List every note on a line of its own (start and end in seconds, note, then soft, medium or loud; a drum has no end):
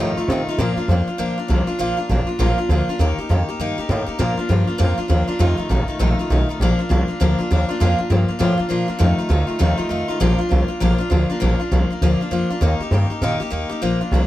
0.00 0.17 F2 medium
0.00 0.16 A2 medium
0.00 0.17 C3 medium
0.00 0.17 D#3 medium
0.00 0.17 A3 loud
0.00 0.17 D#4 medium
0.00 0.16 F4 medium
0.17 0.29 D#3 medium
0.17 0.29 A3 medium
0.17 0.29 D#4 medium
0.17 0.29 F4 medium
0.17 muted upright bass stroke medium
0.28 0.46 C3 medium
0.28 0.48 D#3 medium
0.28 0.48 A3 medium
0.28 0.48 D#4 medium
0.28 0.47 F4 medium
0.47 0.59 A3 medium
0.47 0.59 D#4 medium
0.47 0.59 F4 medium
0.47 muted upright bass stroke medium
0.51 0.59 D#3 medium
0.58 0.76 A#2 medium
0.58 0.77 A#2 medium
0.58 0.78 F3 medium
0.58 0.78 A#3 medium
0.58 0.77 D4 medium
0.58 0.76 F4 medium
0.77 0.89 A#3 soft
0.77 0.89 D4 soft
0.77 0.89 F4 medium
0.77 muted upright bass stroke medium
0.88 1.06 F2 medium
0.88 1.07 F3 medium
0.88 1.08 A#3 medium
0.88 1.08 D4 medium
0.88 1.06 F4 medium
1.07 1.18 A#3 soft
1.07 1.18 D4 soft
1.07 1.18 F4 medium
1.07 muted upright bass stroke medium
1.18 1.36 D2 medium
1.18 1.37 A#2 medium
1.18 1.37 F3 medium
1.18 1.37 A#3 medium
1.18 1.38 D4 medium
1.18 1.37 F4 medium
1.38 1.49 A#3 medium
1.38 1.49 D4 medium
1.38 1.49 F4 medium
1.38 muted upright bass stroke soft
1.48 1.67 C2 medium
1.48 1.67 F3 medium
1.48 1.68 A#3 medium
1.48 1.67 D4 medium
1.48 1.66 F4 medium
1.67 1.78 A#3 soft
1.67 1.79 D4 medium
1.67 1.79 F4 medium
1.67 muted upright bass stroke medium
1.79 1.96 A#1 medium
1.79 1.97 A#2 medium
1.79 1.98 F3 medium
1.79 1.98 A#3 medium
1.79 1.97 D4 loud
1.79 1.96 F4 medium
1.97 2.09 A#3 soft
1.97 2.09 D4 medium
1.97 2.09 F4 medium
2.09 2.26 A1 medium
2.09 2.28 F3 medium
2.09 2.28 A#3 medium
2.09 2.27 D4 medium
2.09 2.25 F4 medium
2.27 2.38 A#3 soft
2.27 2.39 D4 soft
2.27 2.39 F4 medium
2.27 muted upright bass stroke medium
2.39 2.57 A#1 medium
2.39 2.58 A#2 medium
2.39 2.58 F3 medium
2.39 2.58 A#3 medium
2.39 2.58 D4 loud
2.39 2.57 F4 loud
2.58 2.70 D4 medium
2.58 2.69 F4 medium
2.58 muted upright bass stroke medium
2.69 2.87 D2 loud
2.69 2.88 F3 medium
2.69 2.88 A#3 medium
2.69 2.89 D4 medium
2.69 2.88 F4 medium
2.87 2.99 A#3 medium
2.87 3.00 D4 medium
2.87 3.00 F4 medium
2.87 muted upright bass stroke medium
2.99 3.17 D#2 medium
2.99 3.18 D#3 medium
2.99 3.18 A#3 medium
2.99 3.18 D#4 loud
2.99 3.17 G4 loud
3.18 3.29 A#3 soft
3.18 3.30 D#4 soft
3.18 3.30 G4 medium
3.18 muted upright bass stroke medium
3.29 3.47 F2 loud
3.29 3.48 D#3 medium
3.29 3.48 A#3 medium
3.29 3.48 D#4 medium
3.29 3.47 G4 medium
3.48 3.59 A#3 soft
3.48 3.59 D#4 medium
3.48 3.60 G4 medium
3.48 muted upright bass stroke medium
3.59 3.77 G2 medium
3.59 3.78 D#3 medium
3.59 3.78 A#3 medium
3.59 3.78 D#4 loud
3.59 3.77 G4 medium
3.78 3.89 A#3 soft
3.78 3.90 D#4 medium
3.78 3.89 G4 medium
3.78 muted upright bass stroke soft
3.89 4.07 A2 medium
3.89 4.08 D#3 medium
3.89 4.07 A#3 medium
3.89 4.06 D#4 medium
3.89 4.05 G4 medium
4.06 4.18 A#3 medium
4.06 4.19 D#4 medium
4.06 4.19 G4 medium
4.06 muted upright bass stroke medium
4.19 4.38 A#2 medium
4.19 4.37 A#2 medium
4.19 4.38 F3 medium
4.19 4.38 A#3 medium
4.19 4.38 D4 loud
4.19 4.36 F4 loud
4.37 4.48 A#3 soft
4.37 4.49 D4 medium
4.37 4.49 F4 medium
4.37 muted upright bass stroke medium
4.49 4.67 G2 loud
4.49 4.68 F3 medium
4.49 4.68 A#3 medium
4.49 4.67 D4 medium
4.49 4.66 F4 medium
4.67 4.78 A#3 medium
4.67 4.78 D4 medium
4.67 4.78 F4 medium
4.67 muted upright bass stroke medium
4.78 4.97 F2 medium
4.78 4.97 A#2 medium
4.78 4.98 F3 medium
4.78 4.98 A#3 medium
4.78 4.97 D4 loud
4.78 4.96 F4 loud
4.98 5.08 A#3 soft
4.98 5.08 D4 medium
4.98 5.09 F4 medium
4.98 muted upright bass stroke medium
5.08 5.27 D#2 loud
5.08 5.27 F3 medium
5.08 5.28 A#3 medium
5.08 5.27 D4 medium
5.08 5.26 F4 medium
5.28 5.40 A#3 medium
5.28 5.40 D4 medium
5.28 5.39 F4 medium
5.28 muted upright bass stroke medium
5.39 5.58 F2 medium
5.39 5.58 C3 medium
5.39 5.58 D#3 medium
5.39 5.58 A3 medium
5.39 5.57 D#4 medium
5.39 5.56 F4 loud
5.57 5.68 D#3 soft
5.57 5.69 A3 soft
5.57 5.70 D#4 medium
5.57 5.69 F4 medium
5.57 muted upright bass stroke medium
5.69 5.87 A1 loud
5.69 5.88 D#3 medium
5.69 5.89 A3 medium
5.69 5.87 D#4 medium
5.69 5.87 F4 medium
5.88 5.99 D#3 soft
5.88 5.99 A3 soft
5.88 5.99 D#4 soft
5.88 6.00 F4 medium
5.88 muted upright bass stroke medium
5.99 6.18 A#1 medium
5.99 6.18 F2 medium
5.99 6.18 C3 medium
5.99 6.18 D#3 medium
5.99 6.19 A3 medium
5.99 6.19 D#4 medium
5.99 6.18 F4 loud
6.18 6.29 D#3 soft
6.18 6.30 A3 soft
6.18 6.31 D#4 medium
6.18 6.30 F4 medium
6.18 muted upright bass stroke medium
6.30 6.48 B1 medium
6.30 6.49 D#3 medium
6.30 6.49 A3 medium
6.30 6.49 D#4 medium
6.30 6.48 F4 medium
6.49 6.62 D#3 soft
6.49 6.61 A3 medium
6.49 6.61 D#4 medium
6.49 6.60 F4 medium
6.49 muted upright bass stroke medium
6.60 6.78 A#1 medium
6.60 6.79 A#2 medium
6.60 6.80 F3 loud
6.60 6.80 A#3 medium
6.60 6.79 D4 loud
6.60 6.78 F4 medium
6.78 6.89 A#3 soft
6.78 6.90 D4 medium
6.78 6.90 F4 medium
6.78 muted upright bass stroke medium
6.89 7.08 C2 loud
6.89 7.08 F3 medium
6.89 7.09 A#3 medium
6.89 7.08 D4 medium
6.89 7.07 F4 medium
7.08 7.20 A#3 soft
7.08 7.20 D4 medium
7.08 7.20 F4 medium
7.08 muted upright bass stroke medium
7.20 7.38 D2 medium
7.20 7.39 A#2 medium
7.20 7.39 F3 medium
7.20 7.39 A#3 medium
7.20 7.39 D4 loud
7.20 7.37 F4 loud
7.39 7.50 A#3 medium
7.39 7.50 D4 medium
7.39 7.50 F4 medium
7.39 muted upright bass stroke medium
7.51 7.69 D#2 medium
7.51 7.69 F3 medium
7.51 7.69 A#3 medium
7.51 7.69 D4 medium
7.51 7.68 F4 medium
7.69 7.80 A#3 medium
7.69 7.80 D4 medium
7.69 7.80 F4 medium
7.69 muted upright bass stroke medium
7.80 7.98 F2 medium
7.80 7.99 A#2 medium
7.80 7.99 F3 medium
7.80 7.99 A#3 loud
7.80 7.98 D4 medium
7.80 7.97 F4 loud
7.98 8.09 A#3 soft
7.98 8.10 D4 soft
7.98 8.10 F4 medium
7.98 muted upright bass stroke medium
8.10 8.28 G2 medium
8.10 8.29 F3 medium
8.10 8.29 A#3 medium
8.10 8.28 D4 medium
8.10 8.27 F4 medium
8.28 8.38 A#3 soft
8.28 8.39 D4 medium
8.28 8.39 F4 medium
8.28 muted upright bass stroke medium
8.39 8.58 A2 medium
8.39 8.58 A#2 medium
8.39 8.58 F3 medium
8.39 8.59 A#3 loud
8.39 8.58 D4 medium
8.39 8.56 F4 loud
8.57 8.69 A#3 soft
8.57 8.69 D4 medium
8.57 8.70 F4 medium
8.57 muted upright bass stroke medium
8.69 8.88 A#2 medium
8.69 8.88 F3 medium
8.69 8.88 A#3 medium
8.69 8.88 D4 medium
8.69 8.87 F4 medium
8.88 8.99 A#3 medium
8.88 9.00 D4 medium
8.88 8.99 F4 medium
8.88 muted upright bass stroke soft
8.99 9.18 F2 medium
8.99 9.17 F2 medium
8.99 9.18 C3 medium
8.99 9.19 D#3 medium
8.99 9.19 A3 medium
8.99 9.18 D#4 medium
8.99 9.17 F4 loud
9.18 9.28 D#3 soft
9.18 9.28 A3 soft
9.18 9.29 D#4 medium
9.18 9.30 F4 medium
9.18 muted upright bass stroke medium
9.29 9.48 D2 loud
9.29 9.48 D#3 medium
9.29 9.47 A3 medium
9.29 9.47 D#4 medium
9.29 9.46 F4 medium
9.47 9.58 D#3 soft
9.47 9.59 A3 medium
9.47 9.59 D#4 soft
9.47 9.59 F4 medium
9.47 muted upright bass stroke medium
9.59 9.79 D#2 medium
9.59 9.78 F2 medium
9.59 9.79 C3 medium
9.59 9.78 D#3 medium
9.59 9.78 A3 medium
9.59 9.77 D#4 loud
9.59 9.76 F4 loud
9.78 9.88 D#3 soft
9.78 9.89 A3 medium
9.78 9.90 D#4 medium
9.78 9.90 F4 medium
9.78 muted upright bass stroke medium
9.89 10.08 F2 loud
9.89 10.08 D#3 medium
9.89 10.09 A3 medium
9.89 10.08 D#4 medium
9.89 10.07 F4 medium
10.08 10.20 D#3 medium
10.08 10.20 A3 medium
10.08 10.21 D#4 medium
10.08 10.20 F4 medium
10.08 muted upright bass stroke soft
10.20 10.39 A#1 medium
10.20 10.39 A#2 medium
10.20 10.39 F3 medium
10.20 10.39 A#3 medium
10.20 10.39 D4 loud
10.20 10.37 F4 loud
10.38 10.49 A#3 medium
10.38 10.50 D4 medium
10.38 10.51 F4 medium
10.38 muted upright bass stroke medium
10.49 10.68 C2 loud
10.49 10.68 F3 medium
10.49 10.69 A#3 medium
10.49 10.68 D4 medium
10.49 10.67 F4 medium
10.68 10.80 A#3 soft
10.68 10.80 D4 medium
10.68 10.80 F4 medium
10.68 muted upright bass stroke medium
10.80 10.99 A#1 medium
10.80 10.99 A#2 medium
10.80 10.99 F3 medium
10.80 11.00 A#3 medium
10.80 10.99 D4 loud
10.80 10.97 F4 loud
10.98 11.10 A#3 medium
10.98 11.10 D4 medium
10.98 11.11 F4 medium
10.98 muted upright bass stroke medium
11.10 11.29 D2 medium
11.10 11.29 F3 medium
11.10 11.30 A#3 medium
11.10 11.29 D4 medium
11.10 11.28 F4 medium
11.30 11.40 A#3 medium
11.30 11.40 D4 medium
11.30 11.41 F4 medium
11.30 muted upright bass stroke medium
11.40 11.59 A#1 medium
11.40 11.59 A#2 medium
11.40 11.60 F3 medium
11.40 11.60 A#3 medium
11.40 11.59 D4 medium
11.40 11.58 F4 medium
11.60 11.71 A#3 soft
11.60 11.72 D4 medium
11.60 11.71 F4 medium
11.60 muted upright bass stroke medium
11.71 11.89 C2 loud
11.71 11.90 F3 medium
11.71 11.90 A#3 medium
11.71 11.91 D4 medium
11.71 11.89 F4 medium
11.90 12.01 A#3 soft
11.90 12.02 D4 medium
11.90 12.02 F4 medium
11.90 muted upright bass stroke medium
12.01 12.19 D2 medium
12.01 12.20 A#2 medium
12.01 12.20 F3 medium
12.01 12.21 A#3 medium
12.01 12.21 D4 medium
12.01 12.20 F4 medium
12.20 12.30 A#3 soft
12.20 12.31 D4 medium
12.20 12.32 F4 medium
12.20 muted upright bass stroke medium
12.31 12.49 F2 loud
12.31 12.50 F3 medium
12.31 12.50 A#3 medium
12.31 12.50 D4 medium
12.31 12.49 F4 medium
12.50 12.61 A#3 medium
12.50 12.62 D4 medium
12.50 12.62 F4 medium
12.50 muted upright bass stroke soft
12.61 12.79 D#2 medium
12.61 12.80 D#3 medium
12.61 12.80 A#3 medium
12.61 12.81 D#4 medium
12.61 12.79 G4 medium
12.79 12.91 A#3 soft
12.79 12.92 D#4 medium
12.79 12.92 G4 medium
12.79 muted upright bass stroke medium
12.91 13.09 G2 loud
12.91 13.10 D#3 medium
12.91 13.11 A#3 medium
12.91 13.10 D#4 medium
12.91 13.09 G4 medium
13.09 13.22 A#3 soft
13.09 13.22 D#4 medium
13.09 13.22 G4 medium
13.09 muted upright bass stroke medium
13.21 13.39 A#2 medium
13.21 13.40 D#3 medium
13.21 13.41 A#3 medium
13.21 13.40 D#4 loud
13.21 13.39 G4 loud
13.40 13.50 A#3 medium
13.40 13.51 D#4 medium
13.40 13.51 G4 medium
13.40 muted upright bass stroke medium
13.50 13.69 D#2 loud
13.50 13.70 D#3 medium
13.50 13.70 A#3 medium
13.50 13.70 D#4 medium
13.50 13.68 G4 medium
13.69 13.81 A#3 medium
13.69 13.82 D#4 medium
13.69 13.82 G4 medium
13.69 muted upright bass stroke soft
13.82 13.99 A#1 medium
13.82 14.00 A#2 medium
13.82 14.01 F3 medium
13.82 14.01 A#3 medium
13.82 14.00 D4 medium
13.82 14.00 F4 loud
14.01 14.13 A#3 soft
14.01 14.13 D4 soft
14.01 14.12 F4 medium
14.11 14.27 C2 medium
14.11 14.27 F3 medium
14.11 14.27 A#3 medium
14.11 14.27 D4 medium
14.11 14.27 F4 medium